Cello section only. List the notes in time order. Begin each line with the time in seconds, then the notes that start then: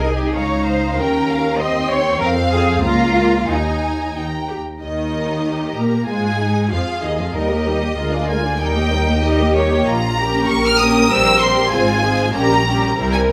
0.08 G#4
0.17 G4
0.27 G#4
0.36 C#5
0.67 C5
0.98 A#4
1.59 D#5
1.91 C#5
2.20 A#4
2.51 G#4
2.83 F4
3.49 D#4
5.44 G4
6.07 F4
6.40 D#4
6.71 G#4
7.35 A#4
7.66 G4
7.97 F4
8.60 D#4
9.23 G4
9.87 F4
10.18 G4
10.49 A#4
11.72 F4
12.03 G#4
12.34 G4
12.65 G4
12.97 A#4